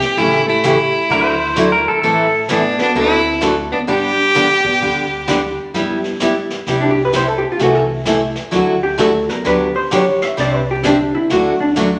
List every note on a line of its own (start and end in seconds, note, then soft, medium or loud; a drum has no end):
0.00 0.17 C4 medium
0.00 0.19 G4 loud
0.00 snare soft
0.17 0.91 A1 medium
0.17 0.40 C#3 medium
0.17 0.40 E3 medium
0.17 0.46 A3 medium
0.17 0.41 A3 medium
0.17 0.41 C#4 medium
0.17 0.48 E4 loud
0.17 0.41 G4 medium
0.17 brush sweep soft
0.47 1.82 A3 medium
0.47 1.83 E4 medium
0.63 0.75 C#3 medium
0.63 0.76 E3 medium
0.63 0.76 A3 medium
0.63 0.76 C#4 medium
0.63 0.76 G4 medium
0.63 snare medium
0.63 hi-hat pedal medium
1.09 1.84 D2 medium
1.09 1.32 D3 medium
1.09 1.33 F#3 medium
1.09 1.33 A3 medium
1.09 1.33 E4 medium
1.09 1.33 F#4 medium
1.09 1.25 A#4 medium
1.09 brush sweep medium
1.25 1.70 C5 medium
1.55 1.68 D3 medium
1.55 2.02 F#3 medium
1.55 1.68 F#3 medium
1.55 2.03 A3 medium
1.55 1.69 A3 medium
1.55 2.03 D4 medium
1.55 2.03 E4 medium
1.55 1.69 E4 medium
1.55 1.69 F#4 medium
1.55 snare medium
1.55 hi-hat pedal medium
1.72 1.87 A#4 medium
1.88 2.01 A4 medium
2.02 2.77 A1 medium
2.02 2.25 E3 medium
2.02 2.25 A3 medium
2.02 2.26 C4 medium
2.02 2.26 E4 medium
2.02 2.40 A4 loud
2.02 2.26 B4 medium
2.02 brush sweep soft
2.48 2.61 E3 medium
2.48 2.61 A3 medium
2.48 2.78 B3 medium
2.48 2.61 C4 medium
2.48 2.78 D4 medium
2.48 2.61 E4 medium
2.48 2.61 B4 medium
2.48 snare medium
2.48 hi-hat pedal medium
2.78 2.93 A3 medium
2.78 2.95 B3 medium
2.78 2.94 C4 medium
2.78 2.94 D4 medium
2.78 2.95 D4 medium
2.78 2.94 F#4 medium
2.78 snare soft
2.95 3.69 D2 medium
2.95 3.18 D3 soft
2.95 3.18 A3 medium
2.95 3.39 C4 medium
2.95 3.18 C4 medium
2.95 3.40 E4 medium
2.95 3.19 F#4 medium
2.95 3.18 A4 medium
2.95 brush sweep soft
3.41 3.53 D3 medium
3.41 3.53 A3 medium
3.41 3.54 C4 medium
3.41 3.54 F#4 medium
3.41 3.54 A4 medium
3.41 snare medium
3.41 hi-hat pedal medium
3.72 3.77 B3 medium
3.72 3.79 D4 medium
3.87 4.62 G1 medium
3.87 4.10 D3 medium
3.87 4.11 G3 medium
3.87 4.11 B3 medium
3.87 5.54 D4 medium
3.87 4.11 D4 medium
3.87 4.11 G4 medium
3.87 5.54 G4 loud
3.87 brush sweep soft
4.34 4.47 D3 medium
4.34 4.47 G3 medium
4.34 4.47 B3 medium
4.34 4.47 D4 medium
4.34 4.47 G4 medium
4.34 snare medium
4.34 hi-hat pedal medium
4.64 4.79 G3 medium
4.64 4.79 B3 medium
4.64 4.79 D4 medium
4.64 4.80 G4 medium
4.64 kick medium
4.81 5.55 D2 medium
4.81 5.04 D3 soft
4.81 5.04 G3 medium
4.81 5.04 B3 medium
4.81 5.04 D4 medium
4.81 5.04 G4 medium
4.81 brush sweep medium
5.27 5.39 D3 medium
5.27 5.40 G3 medium
5.27 5.40 B3 medium
5.27 5.40 D4 medium
5.27 5.40 G4 medium
5.27 snare medium
5.27 hi-hat pedal medium
5.74 6.48 G1 medium
5.74 6.44 G3 medium
5.74 5.96 G3 medium
5.74 6.45 B3 medium
5.74 5.97 B3 medium
5.74 6.45 D4 medium
5.74 6.45 E4 medium
5.74 5.97 E4 medium
5.74 5.97 G4 medium
5.74 6.45 G4 medium
5.74 brush sweep soft
5.74 snare soft
6.04 snare soft
6.20 6.33 G3 medium
6.20 6.33 B3 medium
6.20 6.33 E4 medium
6.20 6.33 G4 medium
6.20 snare medium
6.20 hi-hat pedal medium
6.50 snare soft
6.66 7.41 C2 medium
6.66 6.89 C3 soft
6.66 6.89 G3 medium
6.66 6.90 B3 medium
6.66 6.90 E4 medium
6.66 6.90 G4 medium
6.66 brush sweep soft
6.66 snare soft
6.81 6.96 D4 medium
6.91 7.01 G4 medium
7.05 7.13 B4 medium
7.13 7.25 C3 medium
7.13 7.25 G3 medium
7.13 7.25 B3 medium
7.13 7.26 E4 medium
7.13 7.26 G4 medium
7.13 7.28 C5 medium
7.13 snare medium
7.13 hi-hat pedal medium
7.28 7.43 A4 medium
7.38 7.48 G4 medium
7.52 7.59 F4 medium
7.59 8.33 C2 medium
7.59 7.82 C3 medium
7.59 7.86 E3 medium
7.59 7.82 E3 medium
7.59 7.86 A3 medium
7.59 7.82 A3 medium
7.59 7.87 C4 medium
7.59 7.87 E4 medium
7.59 7.82 E4 medium
7.59 7.87 A4 medium
7.59 7.82 A4 medium
7.59 brush sweep soft
7.59 snare soft
7.63 7.75 F#4 medium
7.75 7.84 A4 medium
8.05 8.18 C3 medium
8.05 8.18 E3 medium
8.05 8.18 A3 medium
8.05 8.18 E4 medium
8.05 8.18 A4 medium
8.05 snare medium
8.05 hi-hat pedal medium
8.35 snare soft
8.51 9.26 D2 medium
8.51 8.74 D3 medium
8.51 8.74 F#3 medium
8.51 8.74 A3 medium
8.51 8.74 E4 medium
8.51 8.75 F#4 medium
8.51 brush sweep medium
8.51 snare soft
8.56 8.83 F#4 medium
8.83 8.98 G4 medium
8.98 9.10 D3 medium
8.98 9.10 F#3 medium
8.98 9.10 A3 medium
8.98 9.11 E4 medium
8.98 9.11 F#4 medium
8.98 9.30 A4 medium
8.98 snare medium
8.98 hi-hat pedal medium
9.27 9.87 F#3 medium
9.27 9.87 G3 medium
9.27 9.87 B3 medium
9.27 9.88 D4 medium
9.27 9.88 F#4 medium
9.27 9.45 A#4 medium
9.27 snare soft
9.44 10.18 D2 medium
9.44 9.67 D3 medium
9.44 9.67 F#3 medium
9.44 9.67 B3 medium
9.44 9.67 D4 medium
9.44 9.68 G4 medium
9.44 9.75 B4 medium
9.44 brush sweep medium
9.44 snare soft
9.76 9.91 C5 medium
9.91 10.03 D3 medium
9.91 10.03 F#3 medium
9.91 10.03 B3 medium
9.91 10.03 D4 medium
9.91 10.04 G4 medium
9.91 snare medium
9.91 hi-hat pedal medium
9.95 10.22 C#5 medium
10.21 10.37 E5 loud
10.21 snare soft
10.37 11.11 C2 medium
10.37 10.59 C3 medium
10.37 10.59 G3 medium
10.37 10.60 C4 medium
10.37 10.60 D4 medium
10.37 10.60 G4 medium
10.37 10.55 D5 medium
10.37 brush sweep soft
10.37 snare soft
10.55 10.69 B4 medium
10.71 10.84 G4 medium
10.82 10.96 C3 medium
10.82 11.29 D3 medium
10.82 11.29 G3 medium
10.82 10.96 G3 medium
10.82 11.29 C4 medium
10.82 10.96 C4 medium
10.82 11.30 D4 medium
10.82 11.14 D4 medium
10.82 10.96 D4 medium
10.82 11.30 G4 medium
10.82 10.96 G4 medium
10.82 snare medium
10.82 hi-hat pedal medium
11.15 11.30 E4 medium
11.30 11.99 D2 medium
11.30 11.52 D3 medium
11.30 11.52 F#3 medium
11.30 11.53 A3 medium
11.30 11.53 D4 medium
11.30 11.53 F#4 medium
11.30 11.60 F#4 medium
11.30 brush sweep soft
11.30 snare soft
11.60 11.70 D4 medium
11.76 11.88 D3 medium
11.76 11.88 F#3 medium
11.76 11.88 A3 medium
11.76 11.88 D4 medium
11.76 11.89 F#4 medium
11.76 snare medium
11.76 hi-hat pedal medium